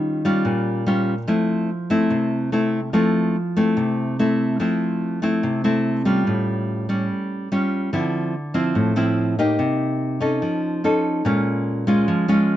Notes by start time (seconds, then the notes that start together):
Already playing: D#3 G3 C#4 F4
0.25 G3 C#4 F4
0.45 A#2
0.86 G3 C#4 F4
1.27 F3 A3 C4 E4
1.90 A3 C4 E4
2.10 C3
2.52 A3 C4 E4
2.93 F3 A3 C4 E4
3.57 A3 C4 E4
3.77 C3
4.19 A3 C4 E4
4.60 F3 A3 C4 E4
5.22 A3 C4 E4
5.43 C3
5.64 A3 C4 E4
6.05 G3 C#4 F4
6.27 A2
6.89 G3 C#4
7.52 G3 C#4 F4
7.93 D3 F3 C4 E4
8.54 F3 C4 E4
8.75 A2
8.96 F3 C4 E4
9.39 A#3 D#4 G4
9.59 C3
10.20 C#4 D#4 A4
10.42 F3
10.84 C#4 D#4 A4
11.25 A#2 G#3 C#4 F4
11.87 G#3 C#4 F4
12.08 F3
12.28 G#3 C#4 F4